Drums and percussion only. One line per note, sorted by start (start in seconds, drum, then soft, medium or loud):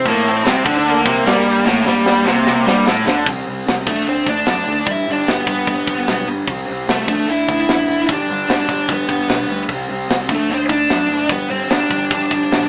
0.05 kick loud
0.05 crash medium
0.45 snare loud
0.45 crash medium
0.66 kick loud
0.86 crash medium
1.06 kick loud
1.26 snare loud
1.26 crash medium
1.67 snare medium
1.87 snare medium
2.06 snare medium
2.27 snare medium
2.47 snare medium
2.68 snare medium
2.87 snare loud
3.08 snare medium
3.26 kick loud
3.26 open hi-hat soft
3.67 snare loud
3.67 open hi-hat medium
3.87 kick loud
4.07 open hi-hat medium
4.26 kick medium
4.46 snare loud
4.46 open hi-hat medium
4.86 kick loud
4.86 open hi-hat medium
5.27 snare loud
5.27 open hi-hat medium
5.47 kick medium
5.67 kick loud
5.67 open hi-hat medium
5.87 kick medium
6.07 snare loud
6.07 open hi-hat medium
6.47 kick loud
6.47 open hi-hat medium
6.88 snare loud
6.88 open hi-hat medium
7.08 kick medium
7.29 open hi-hat medium
7.49 kick medium
7.68 snare loud
7.68 open hi-hat medium
8.08 kick loud
8.08 open hi-hat medium
8.49 snare loud
8.49 open hi-hat medium
8.69 kick medium
8.88 kick loud
8.88 open hi-hat medium
9.09 kick medium
9.29 snare loud
9.29 open hi-hat medium
9.69 kick loud
9.69 open hi-hat medium
10.09 snare loud
10.09 open hi-hat medium
10.29 kick medium
10.49 open hi-hat medium
10.69 kick medium
10.89 snare loud
10.89 open hi-hat medium
11.29 kick loud
11.29 open hi-hat medium
11.70 snare loud
11.70 open hi-hat medium
11.91 kick medium
12.11 kick loud
12.11 open hi-hat medium
12.31 kick medium
12.51 snare loud
12.51 open hi-hat medium